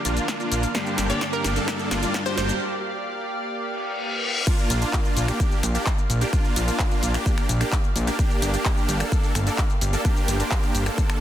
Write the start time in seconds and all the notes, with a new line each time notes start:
Already playing: D3 F3 A#3 D4 F4 D5 F5, riser
0.05 A#1 A#3 D4 F4, open hi-hat, shaker
0.17 closed hi-hat, shaker
0.28 kick, snare, closed hi-hat, shaker
0.40 A#3 D4 F4, closed hi-hat, shaker
0.52 A#1, open hi-hat, shaker
0.63 closed hi-hat, shaker
0.74 G2 D3 G3 A#3 D4 G4 D5, kick, snare, closed hi-hat, shaker
0.86 closed hi-hat, shaker
0.98 G1, snare, open hi-hat, shaker
1.08 G2 D3 G3 A#3 D4 G4 D5, closed hi-hat, shaker
1.21 kick, snare, closed hi-hat, shaker
1.33 A#4, closed hi-hat, shaker
1.44 G1, snare, open hi-hat, shaker
1.56 A#3 D4 A4, closed hi-hat, shaker
1.68 kick, snare, closed hi-hat, shaker
1.79 closed hi-hat, shaker
1.91 G1 A#3 D4 F4, snare, open hi-hat, shaker
2.03 closed hi-hat, shaker
2.14 kick, snare, closed hi-hat, shaker
2.26 A#3 D4 G4 C5, closed hi-hat, shaker
2.38 G1 C5, snare, open hi-hat, shaker
2.49 closed hi-hat, shaker
3.54 reverse cymbal
4.47 A#3 D4 F4 D5 F5, kick, closed hi-hat, crash, shaker
4.58 closed hi-hat, shaker
4.70 A#1, open hi-hat, shaker
4.82 A#3 D4 F4, closed hi-hat, shaker
4.93 kick, clap, closed hi-hat, shaker
5.05 closed hi-hat, shaker
5.17 A#1, open hi-hat, shaker
5.28 A#3 D4 G4, finger snap, closed hi-hat, shaker
5.40 kick, closed hi-hat, shaker
5.52 closed hi-hat, shaker
5.63 A#1, finger snap, open hi-hat, shaker
5.75 A#3 D4 G4, closed hi-hat, shaker
5.86 kick, clap, closed hi-hat, shaker
5.98 closed hi-hat, shaker
6.10 A#1, open hi-hat, shaker
6.21 A#3 D4 G4, closed hi-hat, shaker
6.33 A#3 D4 F4, kick, closed hi-hat, shaker
6.45 closed hi-hat, shaker
6.56 A#1, open hi-hat, shaker
6.68 A#3 D4 F4, closed hi-hat, shaker
6.79 kick, clap, closed hi-hat, shaker
6.91 closed hi-hat, shaker
7.03 A#1, open hi-hat, shaker
7.14 A#3 D4 G4, finger snap, closed hi-hat, shaker
7.26 kick, closed hi-hat, shaker
7.38 finger snap, closed hi-hat, shaker
7.49 A#1, open hi-hat, shaker
7.61 A#3 D4 G4, finger snap, closed hi-hat, shaker
7.72 kick, clap, closed hi-hat, shaker
7.84 closed hi-hat, shaker
7.96 A#1, open hi-hat, shaker
8.07 A#3 D4 G4, closed hi-hat, shaker
8.19 A#3 D4 G4, kick, closed hi-hat, shaker
8.31 closed hi-hat, shaker
8.42 G1, open hi-hat, shaker
8.54 A#3 D4 G4, closed hi-hat, shaker
8.65 kick, clap, closed hi-hat, shaker
8.77 closed hi-hat, shaker
8.89 G1, open hi-hat, shaker
9.00 A#3 D4 A4, finger snap, closed hi-hat, shaker
9.12 kick, closed hi-hat, shaker
9.24 closed hi-hat, shaker
9.35 G1, finger snap, open hi-hat, shaker
9.47 A#3 D4 A4, closed hi-hat, shaker
9.58 kick, clap, closed hi-hat, shaker
9.70 closed hi-hat, shaker
9.81 G1, open hi-hat, shaker
9.93 A#3 D4 A4, closed hi-hat, shaker
10.05 A#3 D4 G4 C5, kick, closed hi-hat, shaker
10.16 closed hi-hat, shaker
10.28 G1, open hi-hat, shaker
10.40 A#3 D4 G4, closed hi-hat, shaker
10.51 kick, clap, closed hi-hat, shaker
10.63 closed hi-hat, shaker
10.75 G1, open hi-hat, shaker
10.86 A#3 D4 A4, finger snap, closed hi-hat, shaker
10.98 kick, closed hi-hat, shaker
11.10 finger snap, closed hi-hat, shaker